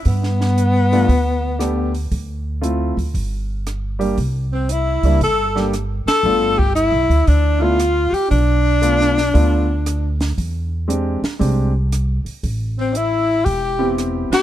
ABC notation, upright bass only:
X:1
M:4/4
L:1/8
Q:"Swing" 1/4=116
K:Gmix
V:1 name="Upright bass" clef=bass
G,,4 D,,4 | D,,3 D,, G,,,4 | C,,3 ^C,, G,,,3 z | G,,,2- (3G,,, B,,, D,, D,,3 z |
B,,,4 D,,4 | E,,3 z ^B,,,3 z | A,,,4 E,,,3 z |]